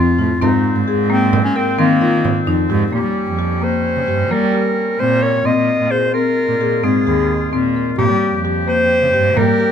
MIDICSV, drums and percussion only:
0, 0, Header, 1, 2, 480
1, 0, Start_track
1, 0, Tempo, 458716
1, 438, Time_signature, 11, 3, 24, 8
1, 10168, End_track
2, 0, Start_track
2, 0, Title_t, "Frame drum"
2, 439, Note_on_c, 9, 64, 67
2, 544, Note_off_c, 9, 64, 0
2, 1164, Note_on_c, 9, 64, 19
2, 1269, Note_off_c, 9, 64, 0
2, 1392, Note_on_c, 9, 64, 67
2, 1496, Note_off_c, 9, 64, 0
2, 1876, Note_on_c, 9, 64, 22
2, 1981, Note_off_c, 9, 64, 0
2, 2113, Note_on_c, 9, 64, 19
2, 2217, Note_off_c, 9, 64, 0
2, 2351, Note_on_c, 9, 64, 61
2, 2456, Note_off_c, 9, 64, 0
2, 8357, Note_on_c, 9, 64, 56
2, 8462, Note_off_c, 9, 64, 0
2, 8848, Note_on_c, 9, 64, 17
2, 8953, Note_off_c, 9, 64, 0
2, 9574, Note_on_c, 9, 64, 18
2, 9678, Note_off_c, 9, 64, 0
2, 9803, Note_on_c, 9, 64, 63
2, 9907, Note_off_c, 9, 64, 0
2, 10168, End_track
0, 0, End_of_file